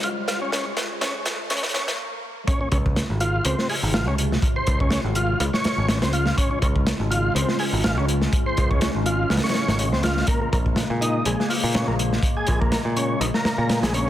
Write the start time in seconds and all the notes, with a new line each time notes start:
Already playing: C#3 G#3 F4 C5, riser
0.03 F4, closed hi-hat
0.28 F4, snare, closed hi-hat
0.41 C#4
0.52 C#4, snare, closed hi-hat
0.77 snare, closed hi-hat
1.01 C#4, snare, closed hi-hat
1.26 snare, closed hi-hat
1.50 C#4, snare, closed hi-hat
1.57 closed hi-hat
1.63 snare, closed hi-hat
1.69 closed hi-hat
1.74 C#4, snare, closed hi-hat
1.88 snare, closed hi-hat
2.47 C3 C#3 G#3 C#4 F4, kick, closed hi-hat
2.61 C#4
2.72 C#2 C#4, kick, closed hi-hat
2.86 kick
2.96 snare, closed hi-hat
3.10 G#1
3.20 F4, closed hi-hat
3.45 C#2 C4, closed hi-hat
3.59 snare
3.69 G#4, open hi-hat
3.83 G#1
3.94 F4, snare, closed hi-hat
4.07 C#2 C#4
4.18 closed hi-hat
4.32 snare
4.42 kick, closed hi-hat
4.56 C5
4.67 C#2, kick, closed hi-hat
4.80 C#4, kick
4.91 C#4, snare, closed hi-hat
5.04 G#1
5.15 F4, closed hi-hat
5.40 C#2 F4, closed hi-hat
5.53 C#5, snare
5.64 snare, closed hi-hat
5.78 G#1
5.89 C#4, snare, closed hi-hat
6.02 C#2 C4, snare, closed hi-hat
6.13 F4, closed hi-hat
6.26 snare
6.37 C#4, kick, closed hi-hat
6.51 C#4
6.62 C#2 C#4, kick, closed hi-hat
6.76 kick
6.87 snare, closed hi-hat
7.00 G#1
7.11 F4, closed hi-hat
7.35 C#2 C4, closed hi-hat
7.48 snare
7.59 G#4, open hi-hat
7.73 G#1
7.84 F4, snare, closed hi-hat
7.97 C#2 C#4
8.08 closed hi-hat
8.22 snare
8.33 kick, closed hi-hat
8.46 C5
8.57 C#2, kick, closed hi-hat
8.71 C#4, kick
8.81 C#4, snare, closed hi-hat
8.95 G#1
9.06 F4, closed hi-hat
9.30 C#2 F4, snare, closed hi-hat
9.37 snare, closed hi-hat
9.44 C#5, snare, closed hi-hat
9.49 snare, closed hi-hat
9.54 snare, closed hi-hat
9.68 G#1, snare, closed hi-hat
9.79 C#4, closed hi-hat
9.93 C#2 C4, snare
10.03 F4, snare, closed hi-hat
10.17 snare
10.27 A#3, kick, closed hi-hat
10.42 A#3
10.52 A#1 A#3, kick, closed hi-hat
10.66 kick
10.76 snare, closed hi-hat
10.90 A#2
11.01 D#4, closed hi-hat
11.25 A#1 G#3, closed hi-hat
11.40 snare
11.50 F4, open hi-hat
11.64 A#2
11.74 C#4, snare, closed hi-hat
11.88 A#1 A#3
11.99 closed hi-hat
12.13 snare
12.23 kick, closed hi-hat
12.37 G#4
12.47 A#1, kick, closed hi-hat
12.61 A#3, kick
12.72 A#3, snare, closed hi-hat
12.85 A#2
12.97 C#4, closed hi-hat
13.21 A#1 D#4, closed hi-hat
13.34 A#4, snare
13.45 snare, closed hi-hat
13.58 A#2
13.69 A#3, snare, closed hi-hat
13.83 A#1 G#3, snare, closed hi-hat
13.94 C#4, closed hi-hat